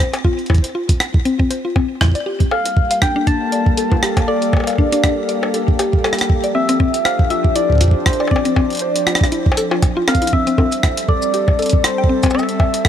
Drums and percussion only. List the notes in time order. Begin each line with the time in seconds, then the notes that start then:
0.13 closed hi-hat, high bongo
0.25 kick
0.39 closed hi-hat
0.46 kick, closed hi-hat, high bongo
0.54 kick, closed hi-hat
0.58 kick
0.64 closed hi-hat
0.89 kick, closed hi-hat
1.00 cross-stick
1.14 kick
1.25 closed hi-hat
1.39 kick
1.51 closed hi-hat
1.76 kick, high bongo
2.01 kick, cross-stick, high bongo
2.05 kick
2.08 kick
2.12 kick, closed hi-hat
2.40 kick, closed hi-hat
2.51 high bongo
2.65 closed hi-hat
2.77 kick
2.91 closed hi-hat
3.02 kick, cross-stick
3.27 kick, closed hi-hat
3.52 closed hi-hat
3.66 kick
3.77 closed hi-hat
3.92 kick, high bongo
4.03 cross-stick
4.17 kick, closed hi-hat, high bongo
4.42 closed hi-hat
4.53 kick, high bongo
4.57 high bongo
4.60 high bongo
4.64 closed hi-hat, high bongo
4.67 high bongo
4.70 high bongo
4.73 high bongo
4.76 kick, high bongo
4.92 closed hi-hat
5.04 kick, cross-stick
5.29 closed hi-hat
5.43 high bongo
5.54 closed hi-hat
5.68 kick
5.79 closed hi-hat, high bongo
5.93 kick
6.04 cross-stick, high bongo
6.13 cross-stick
6.18 cross-stick, closed hi-hat
6.30 kick
6.44 closed hi-hat
6.69 closed hi-hat
6.80 kick
6.94 closed hi-hat
7.05 cross-stick
7.19 kick
7.30 closed hi-hat
7.45 kick
7.56 closed hi-hat
7.70 kick
7.72 kick
7.75 kick
7.78 kick, closed hi-hat
7.81 kick
7.84 kick
7.88 kick
7.91 kick
8.06 kick, cross-stick
8.13 closed hi-hat
8.20 high bongo
8.27 kick, high bongo
8.36 high bongo
8.45 closed hi-hat
8.56 kick, high bongo
8.70 closed hi-hat
8.73 closed hi-hat
8.75 closed hi-hat
8.77 closed hi-hat
8.79 closed hi-hat
8.96 closed hi-hat
9.07 cross-stick
9.15 cross-stick
9.21 kick, cross-stick
9.32 closed hi-hat
9.46 kick
9.52 high bongo
9.57 closed hi-hat
9.71 high bongo
9.82 kick, closed hi-hat, high bongo
10.08 cross-stick, closed hi-hat, high bongo
10.15 kick, closed hi-hat
10.22 closed hi-hat
10.27 closed hi-hat
10.33 kick
10.47 closed hi-hat
10.58 kick, high bongo
10.72 closed hi-hat, shaker
10.83 kick, cross-stick
10.97 closed hi-hat
11.09 kick
11.23 shaker
11.34 closed hi-hat
11.48 kick, high bongo
11.59 closed hi-hat
11.62 closed hi-hat
11.66 closed hi-hat
11.69 kick, closed hi-hat
11.84 cross-stick, closed hi-hat
12.04 kick
12.23 kick, closed hi-hat, high bongo, shaker
12.26 high bongo
12.31 high bongo, shaker
12.35 high bongo
12.39 high bongo, shaker
12.43 high bongo
12.49 closed hi-hat
12.60 kick, high bongo
12.74 closed hi-hat
12.85 kick, cross-stick